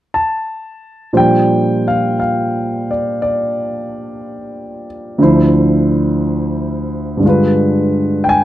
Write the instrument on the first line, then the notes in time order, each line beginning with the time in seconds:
grand piano
0.14 A5
1.13 A#2 F3 G3 D4 C5
1.17 G5
1.88 F5
2.20 F5
2.91 D5
3.22 D5
5.18 D2 D3 F3 E4
5.23 C5
7.17 G2 D3
7.23 G#3 F4
7.29 B4
8.24 G5
8.29 G#5